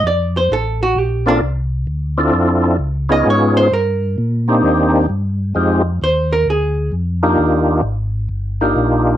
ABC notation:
X:1
M:4/4
L:1/8
Q:"Swing" 1/4=131
K:Bb
V:1 name="Hollow-body jazz guitar"
d c A _G =G D z2 | z4 z e _d c | B6 z2 | z2 c B _A2 z2 |
z8 |]
V:2 name="Tonewheel organ"
z4 z [B,CDFA] z2 | z [CD=EFA]3 z [_C_D_EF_A]3 | z3 [B,CDEG]3 z2 | [_A,CEFG] z6 [B,DEFG]- |
[B,DEFG]2 z3 [B,DEFG]3 |]
V:3 name="Tonewheel organ" clef=bass
F,,2 A,,,2 B,,,2 C,,2 | D,,2 F,,2 _D,,2 _A,,2 | G,,2 B,,2 E,,2 G,,2 | F,,2 E,,2 D,,2 F,,2 |
E,,2 _A,,,2 G,,,2 B,,,2 |]